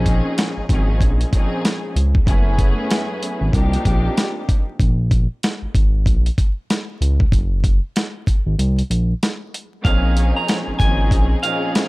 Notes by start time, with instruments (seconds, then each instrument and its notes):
Already playing: analog synth bass A#1, string section A#2 F3 C4 C#4 D#4 G#4
0.06 kick, closed hi-hat
0.38 snare, closed hi-hat
0.57 analog synth bass G#1
0.69 analog synth bass G#1, string section A#2 F3 C4 C#4 D#4 G#4, kick, closed hi-hat
1.01 analog synth bass A#1, kick, closed hi-hat
1.21 closed hi-hat
1.32 string section A#2 F3 C4 C#4 D#4 G#4, kick, closed hi-hat
1.65 snare, closed hi-hat
1.96 analog synth bass C#2, closed hi-hat
2.15 kick
2.24 analog synth bass F#1, string section F#2 A3 B3 C#4 E4 G#4, kick, closed hi-hat
2.59 kick, closed hi-hat
2.91 snare, closed hi-hat
3.23 closed hi-hat
3.41 analog synth bass G#1
3.52 analog synth bass C2, string section C3 F3 A#3 D4 D#4 G4, kick, closed hi-hat
3.73 closed hi-hat
3.85 analog synth bass A#1, kick, closed hi-hat
4.17 snare, closed hi-hat
4.49 kick, closed hi-hat
4.80 analog synth bass A#1, kick, closed hi-hat
5.11 kick, closed hi-hat
5.43 snare, closed hi-hat
5.62 analog synth bass G#1
5.75 analog synth bass G#1, kick, closed hi-hat
6.06 analog synth bass A#1, kick, closed hi-hat
6.26 closed hi-hat
6.38 kick, closed hi-hat
6.70 snare, closed hi-hat
7.01 analog synth bass C#2, closed hi-hat
7.20 kick
7.32 analog synth bass F#1, kick, closed hi-hat
7.64 kick, closed hi-hat
7.96 snare, closed hi-hat
8.27 kick, closed hi-hat
8.46 analog synth bass G#1
8.59 analog synth bass C2, closed hi-hat
8.79 closed hi-hat
8.90 analog synth bass A#1, closed hi-hat
9.23 snare, closed hi-hat
9.54 closed hi-hat
9.84 analog synth bass A#1, string section A#2 F3 C4 C#4 D#4 G#4, clean electric guitar F5, kick, closed hi-hat
10.17 closed hi-hat
10.36 clean electric guitar A#5
10.48 snare, closed hi-hat
10.67 analog synth bass G#1
10.79 analog synth bass G#1, string section A#2 F3 C4 C#4 D#4 G#4, clean electric guitar G#5, kick, closed hi-hat
11.11 analog synth bass A#1, kick, closed hi-hat
11.42 string section A#2 F3 C4 C#4 D#4 G#4, clean electric guitar F5, closed hi-hat
11.75 snare, closed hi-hat